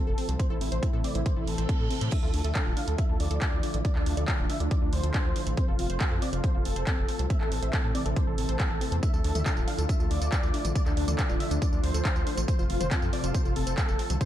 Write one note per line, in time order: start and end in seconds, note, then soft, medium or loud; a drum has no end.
0.00 2.09 C3 medium
0.00 0.35 F3 medium
0.00 7.26 A3 medium
0.00 0.35 F4 medium
0.00 0.31 A4 loud
0.00 2.09 A4 medium
0.07 0.15 F1 medium
0.07 0.14 A4 loud
0.18 0.22 C4 medium
0.18 open hi-hat medium
0.29 0.36 C2 medium
0.29 0.39 C5 medium
0.29 closed hi-hat medium
0.39 2.10 E3 medium
0.39 0.44 C4 medium
0.39 2.10 E4 medium
0.39 0.47 C5 loud
0.39 kick loud
0.39 closed hi-hat medium
0.50 0.58 A1 medium
0.50 0.58 E4 medium
0.50 0.60 A4 loud
0.61 0.69 A1 loud
0.61 0.68 C4 medium
0.61 0.69 E4 medium
0.61 open hi-hat loud
0.72 0.80 A1 medium
0.72 0.82 C5 loud
0.72 0.80 C5 medium
0.72 closed hi-hat medium
0.82 0.93 C4 loud
0.82 0.90 E4 medium
0.82 kick loud
0.82 closed hi-hat medium
0.93 1.01 A2 medium
0.93 1.01 E4 medium
0.93 1.00 A4 loud
1.04 1.08 C4 loud
1.04 1.12 D5 medium
1.04 open hi-hat medium
1.15 1.23 A1 medium
1.15 1.23 E4 medium
1.15 1.25 C5 medium
1.15 closed hi-hat medium
1.26 1.36 C4 medium
1.26 1.34 C5 medium
1.26 kick loud
1.26 closed hi-hat medium
1.26 reverse cymbal medium
1.36 1.44 A1 medium
1.36 1.44 E4 medium
1.36 1.47 A4 medium
1.47 1.55 A1 medium
1.47 1.54 C4 medium
1.47 2.04 A4 loud
1.47 open hi-hat loud
1.58 1.66 A1 medium
1.58 1.68 C5 loud
1.58 closed hi-hat medium
1.69 1.79 C4 loud
1.69 kick loud
1.69 closed hi-hat medium
1.80 1.88 A2 medium
1.80 1.86 A4 loud
1.90 1.95 C4 loud
1.90 open hi-hat medium
2.01 2.09 A2 medium
2.01 2.11 C5 medium
2.01 closed hi-hat medium
2.12 5.54 D3 medium
2.12 7.26 F3 medium
2.12 2.16 D4 medium
2.12 5.54 E4 medium
2.12 7.26 F4 medium
2.12 2.20 E5 loud
2.12 kick loud
2.12 closed hi-hat medium
2.12 crash medium
2.23 2.31 D2 medium
2.23 2.33 F4 loud
2.23 2.31 A4 medium
2.34 2.41 D2 loud
2.34 2.40 D4 medium
2.34 2.41 A4 medium
2.34 open hi-hat loud
2.44 2.52 D2 medium
2.44 2.55 A4 loud
2.44 2.52 E5 medium
2.44 closed hi-hat medium
2.55 2.65 D4 loud
2.55 2.63 A4 medium
2.55 kick loud
2.55 clap loud
2.55 closed hi-hat medium
2.66 2.74 D1 medium
2.66 2.73 F4 loud
2.66 2.74 A4 medium
2.77 2.81 D4 loud
2.77 2.85 F5 medium
2.77 open hi-hat medium
2.88 2.95 D2 medium
2.88 2.98 A4 medium
2.88 2.95 A4 medium
2.88 closed hi-hat medium
2.98 3.09 D4 medium
2.98 3.06 E5 medium
2.98 kick loud
2.98 closed hi-hat medium
3.09 3.17 D2 medium
3.09 3.19 F4 medium
3.09 3.17 A4 medium
3.20 3.28 D2 loud
3.20 3.27 D4 medium
3.20 3.76 D5 loud
3.20 open hi-hat loud
3.31 3.39 D2 medium
3.31 3.41 A4 loud
3.31 closed hi-hat medium
3.41 3.52 D4 loud
3.41 kick loud
3.41 clap loud
3.41 closed hi-hat medium
3.52 3.60 D2 medium
3.52 3.59 F4 loud
3.63 3.67 D4 medium
3.63 open hi-hat medium
3.74 3.82 A1 medium
3.74 3.84 A4 medium
3.74 closed hi-hat medium
3.85 3.89 D4 medium
3.85 3.93 D5 loud
3.85 kick loud
3.85 closed hi-hat medium
3.96 4.03 D2 medium
3.96 4.03 D4 medium
3.96 4.06 F4 loud
3.96 clap soft
4.06 4.14 D2 loud
4.06 4.14 D4 medium
4.06 4.13 D4 medium
4.06 open hi-hat loud
4.17 4.25 D2 medium
4.17 4.27 A4 loud
4.17 4.25 D5 loud
4.17 closed hi-hat medium
4.28 4.38 D4 loud
4.28 4.36 D4 medium
4.28 kick loud
4.28 clap loud
4.28 closed hi-hat medium
4.39 4.46 D1 medium
4.39 4.46 D4 medium
4.39 4.46 F4 loud
4.49 4.54 D4 loud
4.49 4.57 E5 medium
4.49 open hi-hat loud
4.60 4.68 D2 medium
4.60 4.68 D4 medium
4.60 4.70 A4 medium
4.60 closed hi-hat medium
4.71 4.81 D4 medium
4.71 4.79 D5 medium
4.71 kick loud
4.71 closed hi-hat medium
4.82 4.90 D2 medium
4.82 4.90 D4 medium
4.82 4.92 F4 medium
4.93 5.00 D2 medium
4.93 4.99 D4 medium
4.93 5.49 C5 loud
4.93 open hi-hat loud
5.03 5.11 D2 medium
5.03 5.14 A4 loud
5.03 closed hi-hat medium
5.14 5.24 D4 loud
5.14 kick loud
5.14 clap loud
5.14 closed hi-hat medium
5.25 5.33 D2 medium
5.25 5.32 F4 loud
5.36 5.40 D4 loud
5.36 open hi-hat medium
5.47 5.54 A1 medium
5.47 5.57 A4 medium
5.47 closed hi-hat medium
5.57 7.28 C3 medium
5.57 5.61 C4 medium
5.57 8.99 A4 medium
5.57 5.65 C5 loud
5.57 kick loud
5.57 closed hi-hat medium
5.68 5.76 F1 medium
5.68 5.76 F4 medium
5.68 5.78 A4 loud
5.79 5.87 F1 medium
5.79 5.86 C4 medium
5.79 5.87 F4 medium
5.79 open hi-hat loud
5.90 5.98 F1 medium
5.90 6.00 C5 loud
5.90 5.98 C5 loud
5.90 closed hi-hat medium
6.01 6.11 C4 loud
6.01 6.08 F4 medium
6.01 kick loud
6.01 clap loud
6.01 closed hi-hat medium
6.11 6.19 F2 medium
6.11 6.19 F4 medium
6.11 6.18 A4 loud
6.22 6.26 C4 loud
6.22 6.30 D5 medium
6.22 open hi-hat loud
6.33 6.41 F1 medium
6.33 6.41 F4 medium
6.33 6.43 C5 medium
6.33 closed hi-hat medium
6.44 6.54 C4 medium
6.44 6.51 C5 medium
6.44 kick loud
6.44 closed hi-hat medium
6.54 6.62 F1 medium
6.54 6.62 F4 medium
6.54 6.65 A4 medium
6.65 6.73 F1 medium
6.65 6.72 C4 medium
6.65 7.21 A4 loud
6.65 open hi-hat loud
6.76 6.84 F1 medium
6.76 6.86 C5 loud
6.76 closed hi-hat medium
6.87 6.97 C4 loud
6.87 kick loud
6.87 clap loud
6.87 closed hi-hat medium
6.98 7.05 F1 medium
6.98 7.05 A4 loud
7.09 7.13 C4 medium
7.09 open hi-hat medium
7.19 7.27 C2 medium
7.19 7.29 C5 medium
7.19 closed hi-hat medium
7.30 9.01 C3 medium
7.30 9.01 E3 medium
7.30 14.25 A3 medium
7.30 7.34 C4 medium
7.30 12.44 E4 medium
7.30 7.38 E5 medium
7.30 kick loud
7.30 closed hi-hat medium
7.41 7.49 A1 medium
7.41 7.49 A4 medium
7.41 7.51 A4 loud
7.41 clap soft
7.52 7.59 A1 loud
7.52 7.58 C4 medium
7.52 7.59 A4 medium
7.52 open hi-hat loud
7.62 7.70 A1 medium
7.62 7.73 C5 loud
7.62 7.70 E5 loud
7.62 closed hi-hat medium
7.73 7.83 C4 loud
7.73 7.81 A4 medium
7.73 kick loud
7.73 clap loud
7.73 closed hi-hat medium
7.84 7.92 A2 medium
7.84 7.91 A4 loud
7.84 7.92 A4 medium
7.95 7.99 C4 loud
7.95 8.03 D5 medium
7.95 open hi-hat loud
8.06 8.13 A1 medium
8.06 8.13 A4 medium
8.06 8.16 C5 medium
8.06 closed hi-hat medium
8.16 8.27 C4 medium
8.16 8.24 C5 medium
8.16 kick loud
8.16 closed hi-hat medium
8.27 8.35 A1 medium
8.27 8.37 A4 medium
8.27 8.35 A4 medium
8.38 8.46 A1 loud
8.38 8.45 C4 medium
8.38 8.94 A4 loud
8.38 open hi-hat loud
8.49 8.57 A1 medium
8.49 8.59 C5 loud
8.49 closed hi-hat medium
8.59 8.70 C4 loud
8.59 kick loud
8.59 clap loud
8.59 closed hi-hat medium
8.70 8.78 A1 medium
8.70 8.77 A4 loud
8.81 8.85 C4 loud
8.81 open hi-hat loud
8.92 9.00 E2 medium
8.92 9.02 C5 medium
8.92 closed hi-hat medium
9.03 12.45 D3 medium
9.03 14.17 F3 medium
9.03 9.07 D4 medium
9.03 14.17 F4 medium
9.03 9.10 E5 loud
9.03 kick loud
9.03 closed hi-hat medium
9.03 tambourine medium
9.13 9.21 D2 medium
9.13 9.18 A4 loud
9.13 9.21 A4 medium
9.13 tambourine soft
9.24 9.32 D2 loud
9.24 9.31 D4 medium
9.24 9.32 A4 medium
9.24 open hi-hat loud
9.35 9.43 D2 medium
9.35 9.45 A4 loud
9.35 9.43 E5 loud
9.35 closed hi-hat medium
9.35 mid tom medium
9.35 tambourine medium
9.46 9.56 D4 loud
9.46 9.54 A4 medium
9.46 kick loud
9.46 clap loud
9.46 closed hi-hat medium
9.46 tambourine medium
9.57 9.64 D1 medium
9.57 9.63 F4 loud
9.57 9.64 A4 medium
9.57 tambourine soft
9.67 9.72 D4 loud
9.67 9.75 F5 medium
9.67 open hi-hat loud
9.78 9.86 D2 medium
9.78 9.88 A4 medium
9.78 9.86 A4 medium
9.78 closed hi-hat medium
9.78 tambourine medium
9.89 9.99 D4 medium
9.89 9.97 E5 medium
9.89 kick loud
9.89 closed hi-hat medium
9.89 tambourine medium
10.00 10.08 D2 medium
10.00 10.10 F4 medium
10.00 10.08 A4 medium
10.00 tambourine soft
10.11 10.18 D2 loud
10.11 10.17 D4 medium
10.11 10.67 D5 loud
10.11 open hi-hat loud
10.21 10.29 D2 medium
10.21 10.32 A4 loud
10.21 closed hi-hat medium
10.21 tambourine medium
10.32 10.42 D4 loud
10.32 kick loud
10.32 clap loud
10.32 closed hi-hat medium
10.32 tambourine medium
10.43 10.51 D2 medium
10.43 10.50 F4 loud
10.43 tambourine soft
10.54 10.58 D4 medium
10.54 open hi-hat medium
10.65 10.72 A1 medium
10.65 10.75 A4 medium
10.65 closed hi-hat medium
10.65 mid tom medium
10.65 tambourine medium
10.75 10.80 D4 medium
10.75 10.83 D5 loud
10.75 kick loud
10.75 closed hi-hat medium
10.75 tambourine medium
10.86 10.94 D2 medium
10.86 10.94 D4 medium
10.86 10.90 A4 loud
10.86 clap soft
10.86 tambourine soft
10.97 11.05 D2 loud
10.97 11.05 D4 medium
10.97 11.04 D4 medium
10.97 open hi-hat loud
11.08 11.16 D2 medium
11.08 11.18 A4 loud
11.08 11.15 D5 loud
11.08 closed hi-hat medium
11.08 mid tom medium
11.08 tambourine medium
11.19 11.26 D4 medium
11.19 11.29 D4 loud
11.19 kick loud
11.19 clap loud
11.19 closed hi-hat medium
11.19 tambourine medium
11.29 11.37 D1 medium
11.29 11.37 D4 medium
11.29 11.36 F4 loud
11.29 mid tom medium
11.29 tambourine soft
11.40 11.44 D4 medium
11.40 11.48 E5 medium
11.40 open hi-hat medium
11.51 11.59 D2 medium
11.51 11.59 D4 medium
11.51 11.61 A4 medium
11.51 closed hi-hat medium
11.51 tambourine medium
11.62 11.72 D4 medium
11.62 11.69 D5 medium
11.62 kick loud
11.62 closed hi-hat medium
11.62 tambourine medium
11.72 11.80 D2 medium
11.72 11.80 D4 medium
11.72 11.83 F4 medium
11.72 tambourine soft
11.83 11.91 D2 loud
11.83 11.90 D4 medium
11.83 12.39 C5 loud
11.83 open hi-hat loud
11.94 12.02 D2 medium
11.94 12.04 A4 loud
11.94 closed hi-hat medium
11.94 tambourine medium
12.05 12.15 D4 loud
12.05 kick loud
12.05 clap loud
12.05 closed hi-hat medium
12.05 tambourine medium
12.16 12.23 D2 medium
12.16 12.22 F4 loud
12.16 tambourine soft
12.27 12.31 D4 loud
12.27 open hi-hat medium
12.37 12.45 A1 medium
12.37 12.48 A4 medium
12.37 closed hi-hat medium
12.37 tambourine medium
12.48 14.19 C3 medium
12.48 12.52 C4 medium
12.48 14.19 A4 medium
12.48 12.56 C5 loud
12.48 kick loud
12.48 closed hi-hat medium
12.48 tambourine medium
12.59 12.67 F1 medium
12.59 12.67 F4 medium
12.59 12.63 C5 loud
12.59 tambourine soft
12.70 12.77 F1 loud
12.70 12.76 C4 medium
12.70 12.77 F4 medium
12.70 open hi-hat loud
12.80 12.88 F1 medium
12.80 12.91 C5 loud
12.80 12.88 C5 loud
12.80 closed hi-hat medium
12.80 mid tom medium
12.80 tambourine medium
12.91 13.01 C4 loud
12.91 12.99 F4 medium
12.91 kick loud
12.91 clap loud
12.91 closed hi-hat medium
12.91 tambourine medium
13.02 13.10 F2 medium
13.02 13.10 F4 medium
13.02 13.09 A4 loud
13.02 tambourine soft
13.13 13.17 C4 loud
13.13 13.21 D5 medium
13.13 open hi-hat medium
13.24 13.31 F1 medium
13.24 13.31 F4 medium
13.24 13.34 C5 medium
13.24 closed hi-hat medium
13.24 tambourine medium
13.34 13.45 C4 medium
13.34 13.42 C5 medium
13.34 kick loud
13.34 closed hi-hat medium
13.34 tambourine medium
13.45 13.53 F1 medium
13.45 13.53 F4 medium
13.45 13.55 A4 medium
13.45 tambourine soft
13.56 13.64 F1 medium
13.56 13.63 C4 medium
13.56 14.12 A4 loud
13.56 open hi-hat loud
13.67 13.75 F1 medium
13.67 13.77 C5 loud
13.67 closed hi-hat medium
13.67 tambourine medium
13.77 13.88 C4 loud
13.77 kick loud
13.77 clap loud
13.77 closed hi-hat medium
13.77 tambourine medium
13.88 13.96 F1 medium
13.88 13.95 A4 loud
13.88 tambourine soft
13.99 14.03 C4 loud
13.99 open hi-hat medium
14.10 14.18 C2 medium
14.10 14.20 C5 medium
14.10 closed hi-hat medium
14.10 mid tom medium
14.10 tambourine medium
14.21 14.25 C3 medium
14.21 14.25 E3 medium
14.21 14.25 C4 medium
14.21 14.25 E4 medium
14.21 14.25 A4 medium
14.21 14.25 C5 loud
14.21 kick loud
14.21 closed hi-hat medium
14.21 tambourine medium